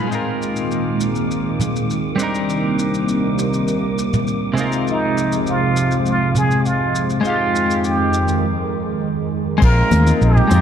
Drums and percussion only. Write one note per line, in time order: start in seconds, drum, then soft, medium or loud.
0.12 shaker soft
0.42 shaker medium
0.56 shaker medium
0.71 shaker soft
1.01 shaker medium
1.16 shaker soft
1.31 shaker soft
1.60 mid tom medium
1.60 shaker medium
1.76 shaker soft
1.90 shaker soft
2.19 shaker medium
2.35 shaker medium
2.50 shaker soft
2.79 shaker medium
2.94 shaker medium
3.08 shaker soft
3.39 shaker medium
3.53 shaker soft
3.68 shaker soft
3.98 shaker medium
4.13 mid tom medium
4.13 shaker soft
4.27 shaker soft
4.57 shaker medium
4.72 shaker medium
4.88 shaker soft
5.18 shaker medium
5.32 shaker medium
5.47 shaker soft
5.77 shaker medium
5.91 shaker medium
6.06 shaker soft
6.35 mid tom medium
6.35 shaker medium
6.51 shaker medium
6.66 shaker soft
6.95 shaker medium
7.10 shaker medium
7.25 shaker soft
7.56 shaker medium
7.70 shaker medium
7.84 shaker soft
8.13 shaker medium
8.28 shaker medium
9.62 kick loud
9.62 crash medium
9.62 shaker soft
9.91 closed hi-hat medium
9.91 high conga loud
9.91 low conga loud
9.91 shaker medium
10.07 high bongo medium
10.07 shaker medium
10.22 shaker soft
10.37 mid tom medium
10.51 closed hi-hat loud
10.51 high bongo medium
10.51 shaker medium